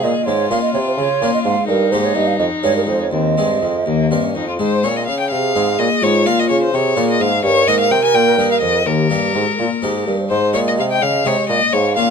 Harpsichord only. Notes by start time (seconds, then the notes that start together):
Already playing: G#4
0.04 A#2
0.27 G#2 G#3
0.51 A#2 A#3 C#4 F4
0.75 C3
0.99 C#3
1.22 A#2 A#3 C#4 F4
1.45 G#2
1.69 G2
1.92 G#2 A#3 D#4 G4
2.15 G2
2.40 F2
2.63 G2 G#3 C#4 G#4
2.87 F2
3.11 D#2
3.37 G2 G#3 C4 G#4
3.63 F2
3.86 D#2
4.11 G2 A#3 A#4
4.35 F2
4.59 G#2 G#3
4.83 A#2 C4 G#4
5.08 C#3
5.31 C3
5.55 G#2 C4 G#4
5.79 A#2
6.02 G#2 G#3
6.26 A#2 A#3 F4 A#4
6.49 C#3
6.74 C3
6.96 A#2 A#3 F4 A#4
7.21 G#2
7.44 G2
7.68 G#2 A#3 D#4 A#4
7.92 C3
8.15 A#2
8.39 G2 A#3 D#4 A#4
8.62 F2
8.86 D#2
9.10 G2 A#3 D#4 G4
9.34 G#2
9.59 A#2
9.82 G#2 A#3 D#4 G4
10.08 G2
10.30 G#2
10.53 A#2 G#3 D#4 G#4
10.78 C3
11.02 C#3
11.25 C3 G#3 D#4 G#4
11.49 A#2
11.73 G#2
11.97 A#2 A#3 C#4 F4